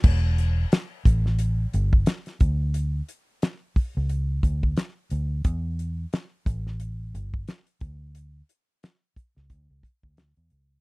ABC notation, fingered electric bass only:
X:1
M:4/4
L:1/16
Q:"Swing 16ths" 1/4=89
K:Glyd
V:1 name="Fingered electric bass" clef=bass
E,,,4 z2 A,,,4 G,,,2 z2 D,,2- | D,,2 z4 z C,,3 D,,2 z2 D,,2 | E,,4 z2 A,,,4 G,,,2 z2 D,,2- | D,,2 z4 z C,, D,, C,, z D,,2 E,, C,,2 |]